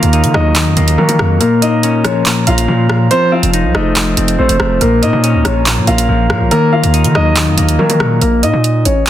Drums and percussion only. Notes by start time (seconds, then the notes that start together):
0.03 closed hi-hat
0.13 closed hi-hat
0.24 closed hi-hat
0.34 cross-stick
0.55 clap, closed hi-hat
0.77 closed hi-hat
0.88 closed hi-hat
1.09 closed hi-hat
1.19 cross-stick
1.41 closed hi-hat
1.62 closed hi-hat
1.83 closed hi-hat
2.04 cross-stick, closed hi-hat
2.26 clap, closed hi-hat
2.47 closed hi-hat
2.58 closed hi-hat
2.90 cross-stick
3.11 closed hi-hat
3.43 closed hi-hat
3.54 closed hi-hat
3.75 cross-stick
3.96 clap, closed hi-hat
4.17 closed hi-hat
4.28 closed hi-hat
4.49 closed hi-hat
4.60 cross-stick
4.81 closed hi-hat
5.03 closed hi-hat
5.24 closed hi-hat
5.45 cross-stick, closed hi-hat
5.66 clap, closed hi-hat
5.87 closed hi-hat
5.98 closed hi-hat
6.30 cross-stick
6.51 closed hi-hat
6.84 closed hi-hat
6.94 closed hi-hat
7.04 closed hi-hat
7.15 cross-stick
7.36 clap, closed hi-hat
7.58 closed hi-hat
7.69 closed hi-hat
7.90 closed hi-hat
8.00 cross-stick
8.21 closed hi-hat
8.43 closed hi-hat
8.64 closed hi-hat
8.85 closed hi-hat
9.06 clap, closed hi-hat